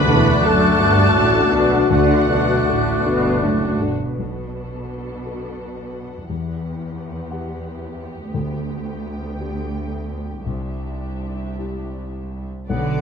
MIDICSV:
0, 0, Header, 1, 11, 480
1, 0, Start_track
1, 0, Tempo, 717703
1, 779, Tempo, 758534
1, 1254, Time_signature, 6, 3, 24, 8
1, 2699, Tempo, 709220
1, 3659, Tempo, 684932
1, 6059, Tempo, 727273
1, 8678, End_track
2, 0, Start_track
2, 0, Title_t, "Flute section"
2, 0, Program_c, 0, 73
2, 0, Note_on_c, 0, 90, 93
2, 1227, Note_off_c, 0, 90, 0
2, 1248, Note_on_c, 0, 90, 76
2, 2455, Note_off_c, 0, 90, 0
2, 8678, End_track
3, 0, Start_track
3, 0, Title_t, "Violin section"
3, 0, Program_c, 1, 48
3, 0, Note_on_c, 1, 83, 114
3, 282, Note_on_c, 1, 81, 116
3, 294, Note_off_c, 1, 83, 0
3, 1248, Note_off_c, 1, 81, 0
3, 1250, Note_on_c, 1, 78, 96
3, 1981, Note_off_c, 1, 78, 0
3, 2704, Note_on_c, 1, 78, 35
3, 5544, Note_off_c, 1, 78, 0
3, 5562, Note_on_c, 1, 79, 56
3, 6976, Note_off_c, 1, 79, 0
3, 7002, Note_on_c, 1, 76, 44
3, 8306, Note_off_c, 1, 76, 0
3, 8464, Note_on_c, 1, 74, 84
3, 8678, Note_off_c, 1, 74, 0
3, 8678, End_track
4, 0, Start_track
4, 0, Title_t, "Oboe"
4, 0, Program_c, 2, 68
4, 0, Note_on_c, 2, 74, 93
4, 1232, Note_off_c, 2, 74, 0
4, 1251, Note_on_c, 2, 74, 66
4, 2456, Note_off_c, 2, 74, 0
4, 8678, End_track
5, 0, Start_track
5, 0, Title_t, "Grand piano"
5, 0, Program_c, 3, 0
5, 0, Control_c, 3, 64, 127
5, 0, Note_on_c, 3, 38, 77
5, 53, Note_on_c, 3, 62, 59
5, 54, Note_on_c, 3, 66, 53
5, 56, Note_on_c, 3, 69, 70
5, 268, Note_off_c, 3, 62, 0
5, 269, Note_off_c, 3, 66, 0
5, 270, Note_off_c, 3, 69, 0
5, 290, Note_on_c, 3, 62, 63
5, 297, Note_on_c, 3, 66, 64
5, 297, Note_on_c, 3, 69, 63
5, 509, Note_off_c, 3, 62, 0
5, 513, Note_off_c, 3, 66, 0
5, 513, Note_off_c, 3, 69, 0
5, 530, Note_on_c, 3, 62, 58
5, 532, Note_on_c, 3, 66, 53
5, 536, Note_on_c, 3, 69, 66
5, 752, Note_off_c, 3, 62, 0
5, 753, Note_off_c, 3, 66, 0
5, 755, Note_off_c, 3, 69, 0
5, 775, Note_on_c, 3, 62, 55
5, 780, Note_on_c, 3, 66, 60
5, 781, Note_on_c, 3, 69, 60
5, 987, Note_off_c, 3, 62, 0
5, 990, Note_off_c, 3, 66, 0
5, 990, Note_off_c, 3, 69, 0
5, 1004, Note_on_c, 3, 62, 46
5, 1008, Note_on_c, 3, 66, 51
5, 1011, Note_on_c, 3, 69, 49
5, 1226, Note_off_c, 3, 62, 0
5, 1227, Note_off_c, 3, 66, 0
5, 1229, Note_off_c, 3, 69, 0
5, 1247, Note_off_c, 3, 38, 0
5, 1247, Note_on_c, 3, 38, 56
5, 1267, Control_c, 3, 64, 0
5, 1398, Control_c, 3, 64, 127
5, 1491, Note_off_c, 3, 38, 0
5, 1493, Note_on_c, 3, 62, 52
5, 1495, Note_on_c, 3, 66, 49
5, 1497, Note_on_c, 3, 69, 50
5, 1717, Note_off_c, 3, 62, 0
5, 1717, Note_off_c, 3, 66, 0
5, 1719, Note_off_c, 3, 69, 0
5, 1741, Note_on_c, 3, 62, 44
5, 1742, Note_on_c, 3, 66, 51
5, 1745, Note_on_c, 3, 69, 59
5, 1956, Note_off_c, 3, 62, 0
5, 1957, Note_off_c, 3, 66, 0
5, 1958, Note_off_c, 3, 69, 0
5, 1979, Note_on_c, 3, 62, 49
5, 1980, Note_on_c, 3, 66, 47
5, 1980, Note_on_c, 3, 69, 48
5, 2194, Note_off_c, 3, 62, 0
5, 2194, Note_off_c, 3, 66, 0
5, 2194, Note_off_c, 3, 69, 0
5, 2214, Note_on_c, 3, 62, 49
5, 2217, Note_on_c, 3, 66, 47
5, 2217, Note_on_c, 3, 69, 51
5, 2434, Note_off_c, 3, 62, 0
5, 2436, Note_off_c, 3, 66, 0
5, 2436, Note_off_c, 3, 69, 0
5, 2453, Note_on_c, 3, 62, 44
5, 2454, Note_on_c, 3, 66, 50
5, 2455, Note_on_c, 3, 69, 48
5, 2670, Note_off_c, 3, 62, 0
5, 2671, Note_off_c, 3, 66, 0
5, 2671, Note_off_c, 3, 69, 0
5, 2692, Note_on_c, 3, 35, 31
5, 2712, Control_c, 3, 64, 0
5, 2842, Control_c, 3, 64, 127
5, 3416, Note_on_c, 3, 66, 28
5, 3417, Note_on_c, 3, 69, 29
5, 4108, Note_off_c, 3, 35, 0
5, 4108, Note_off_c, 3, 66, 0
5, 4109, Note_off_c, 3, 69, 0
5, 4134, Note_on_c, 3, 40, 40
5, 4151, Control_c, 3, 64, 0
5, 4270, Control_c, 3, 64, 127
5, 4847, Note_on_c, 3, 78, 34
5, 4849, Note_on_c, 3, 67, 38
5, 5538, Note_off_c, 3, 40, 0
5, 5540, Note_off_c, 3, 78, 0
5, 5541, Note_off_c, 3, 67, 0
5, 5569, Note_on_c, 3, 38, 46
5, 5580, Control_c, 3, 64, 0
5, 5689, Control_c, 3, 64, 127
5, 6292, Note_on_c, 3, 62, 29
5, 6294, Note_on_c, 3, 67, 35
5, 6977, Note_off_c, 3, 62, 0
5, 6978, Note_off_c, 3, 67, 0
5, 6979, Note_off_c, 3, 38, 0
5, 6994, Note_on_c, 3, 36, 29
5, 7018, Control_c, 3, 64, 0
5, 7149, Control_c, 3, 64, 127
5, 7734, Note_on_c, 3, 64, 30
5, 7737, Note_on_c, 3, 67, 35
5, 8436, Note_off_c, 3, 36, 0
5, 8438, Note_off_c, 3, 64, 0
5, 8440, Note_off_c, 3, 67, 0
5, 8470, Note_on_c, 3, 35, 52
5, 8480, Control_c, 3, 64, 0
5, 8589, Control_c, 3, 64, 127
5, 8678, Note_off_c, 3, 35, 0
5, 8678, End_track
6, 0, Start_track
6, 0, Title_t, "Violin section"
6, 0, Program_c, 4, 48
6, 0, Note_on_c, 4, 62, 78
6, 0, Note_on_c, 4, 66, 79
6, 1225, Note_off_c, 4, 62, 0
6, 1225, Note_off_c, 4, 66, 0
6, 1249, Note_on_c, 4, 66, 61
6, 1250, Note_on_c, 4, 62, 64
6, 2537, Note_off_c, 4, 62, 0
6, 2537, Note_off_c, 4, 66, 0
6, 2696, Note_on_c, 4, 69, 33
6, 4110, Note_off_c, 4, 69, 0
6, 4138, Note_on_c, 4, 67, 38
6, 6979, Note_off_c, 4, 67, 0
6, 7004, Note_on_c, 4, 67, 33
6, 8307, Note_off_c, 4, 67, 0
6, 8468, Note_on_c, 4, 66, 50
6, 8469, Note_on_c, 4, 74, 50
6, 8678, Note_off_c, 4, 66, 0
6, 8678, Note_off_c, 4, 74, 0
6, 8678, End_track
7, 0, Start_track
7, 0, Title_t, "French horn section"
7, 0, Program_c, 5, 60
7, 0, Note_on_c, 5, 62, 114
7, 0, Note_on_c, 5, 66, 111
7, 2457, Note_off_c, 5, 62, 0
7, 2457, Note_off_c, 5, 66, 0
7, 8469, Note_on_c, 5, 69, 65
7, 8471, Note_on_c, 5, 47, 61
7, 8678, Note_off_c, 5, 47, 0
7, 8678, Note_off_c, 5, 69, 0
7, 8678, End_track
8, 0, Start_track
8, 0, Title_t, "Viola section"
8, 0, Program_c, 6, 48
8, 0, Note_on_c, 6, 71, 120
8, 283, Note_off_c, 6, 71, 0
8, 291, Note_on_c, 6, 69, 96
8, 1251, Note_on_c, 6, 66, 81
8, 1253, Note_off_c, 6, 69, 0
8, 1981, Note_off_c, 6, 66, 0
8, 2692, Note_on_c, 6, 62, 36
8, 4108, Note_off_c, 6, 62, 0
8, 4136, Note_on_c, 6, 59, 45
8, 6978, Note_off_c, 6, 59, 0
8, 7003, Note_on_c, 6, 62, 41
8, 8306, Note_off_c, 6, 62, 0
8, 8471, Note_on_c, 6, 62, 60
8, 8472, Note_on_c, 6, 59, 64
8, 8678, Note_off_c, 6, 59, 0
8, 8678, Note_off_c, 6, 62, 0
8, 8678, End_track
9, 0, Start_track
9, 0, Title_t, "Clarinet"
9, 0, Program_c, 7, 71
9, 0, Note_on_c, 7, 57, 90
9, 1228, Note_off_c, 7, 57, 0
9, 1253, Note_on_c, 7, 57, 72
9, 2457, Note_off_c, 7, 57, 0
9, 8475, Note_on_c, 7, 78, 66
9, 8678, Note_off_c, 7, 78, 0
9, 8678, End_track
10, 0, Start_track
10, 0, Title_t, "Cello section"
10, 0, Program_c, 8, 48
10, 61, Note_on_c, 8, 40, 86
10, 292, Note_off_c, 8, 40, 0
10, 297, Note_on_c, 8, 42, 74
10, 532, Note_off_c, 8, 42, 0
10, 539, Note_on_c, 8, 43, 87
10, 776, Note_off_c, 8, 43, 0
10, 777, Note_on_c, 8, 45, 68
10, 1007, Note_off_c, 8, 45, 0
10, 1008, Note_on_c, 8, 47, 69
10, 1247, Note_off_c, 8, 47, 0
10, 1254, Note_on_c, 8, 50, 82
10, 1497, Note_off_c, 8, 50, 0
10, 1499, Note_on_c, 8, 47, 65
10, 1739, Note_off_c, 8, 47, 0
10, 1748, Note_on_c, 8, 45, 65
10, 1979, Note_off_c, 8, 45, 0
10, 1983, Note_on_c, 8, 47, 83
10, 2203, Note_off_c, 8, 47, 0
10, 2221, Note_on_c, 8, 45, 66
10, 2462, Note_off_c, 8, 45, 0
10, 2462, Note_on_c, 8, 43, 55
10, 2699, Note_off_c, 8, 43, 0
10, 2701, Note_on_c, 8, 47, 38
10, 4112, Note_off_c, 8, 47, 0
10, 4136, Note_on_c, 8, 40, 48
10, 5539, Note_off_c, 8, 40, 0
10, 5563, Note_on_c, 8, 38, 55
10, 6977, Note_off_c, 8, 38, 0
10, 7006, Note_on_c, 8, 36, 42
10, 8308, Note_off_c, 8, 36, 0
10, 8470, Note_on_c, 8, 50, 74
10, 8678, Note_off_c, 8, 50, 0
10, 8678, End_track
11, 0, Start_track
11, 0, Title_t, "Double bass section"
11, 0, Program_c, 10, 48
11, 57, Note_on_c, 10, 28, 88
11, 289, Note_off_c, 10, 28, 0
11, 289, Note_on_c, 10, 30, 68
11, 528, Note_off_c, 10, 30, 0
11, 530, Note_on_c, 10, 31, 79
11, 771, Note_off_c, 10, 31, 0
11, 774, Note_on_c, 10, 33, 82
11, 1006, Note_off_c, 10, 33, 0
11, 1009, Note_on_c, 10, 35, 61
11, 1247, Note_off_c, 10, 35, 0
11, 1251, Note_on_c, 10, 38, 85
11, 1495, Note_off_c, 10, 38, 0
11, 1497, Note_on_c, 10, 35, 72
11, 1738, Note_off_c, 10, 35, 0
11, 1741, Note_on_c, 10, 33, 58
11, 1975, Note_off_c, 10, 33, 0
11, 1980, Note_on_c, 10, 31, 75
11, 2213, Note_off_c, 10, 31, 0
11, 2221, Note_on_c, 10, 30, 70
11, 2459, Note_on_c, 10, 28, 60
11, 2462, Note_off_c, 10, 30, 0
11, 2692, Note_off_c, 10, 28, 0
11, 8469, Note_on_c, 10, 35, 61
11, 8678, Note_off_c, 10, 35, 0
11, 8678, End_track
0, 0, End_of_file